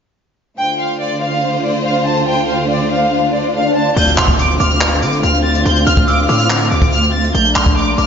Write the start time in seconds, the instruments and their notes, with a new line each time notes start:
0.58 string section D2 D3 F4 C5, violin section G5
0.80 violin section F5
1.01 violin section D5
1.22 violin section F5
1.64 violin section D5
1.86 violin section F5
2.06 violin section A5
2.27 violin section G5, swell
2.48 violin section F5
2.70 violin section D5
2.91 violin section F5
3.33 violin section D5
3.54 violin section F5
3.75 violin section A5
3.96 808-style bass D2, string section D3 A3 C4 F4, violin section G6, crash, impact
4.07 closed hi-hat
4.17 808-style bass D2, synth bell C6, violin section F6, clap, closed hi-hat
4.28 kick
4.38 violin section D6, closed hi-hat
4.60 808-style bass D2, synth bell D6, violin section F6, closed hi-hat
4.70 closed hi-hat
4.81 clap, closed hi-hat
4.92 closed hi-hat
5.02 808-style bass D3, violin section D6, closed hi-hat
5.13 closed hi-hat
5.23 808-style bass D2, violin section F6, closed hi-hat
5.34 closed hi-hat
5.45 violin section A6
5.55 closed hi-hat
5.66 808-style bass D2, violin section G6, closed hi-hat
5.76 closed hi-hat
5.86 808-style bass D2, violin section F6, synth bell F6, closed hi-hat
5.97 kick
6.08 violin section D6, synth bell E6, closed hi-hat
6.29 808-style bass A2, synth bell D6, violin section F6, open hi-hat
6.39 closed hi-hat
6.50 clap
6.61 closed hi-hat
6.71 808-style bass D2, violin section D6, closed hi-hat
6.82 kick, closed hi-hat
6.92 violin section F6, closed hi-hat
7.03 closed hi-hat
7.13 violin section A6
7.24 closed hi-hat
7.35 808-style bass A#1, string section A#3 D4, violin section G6, closed hi-hat
7.45 closed hi-hat
7.56 808-style bass A#1, synth bell C6, violin section F6, clap
7.66 kick
7.77 violin section D6, closed hi-hat
7.98 808-style bass A#1, synth bell D6, violin section F6, closed hi-hat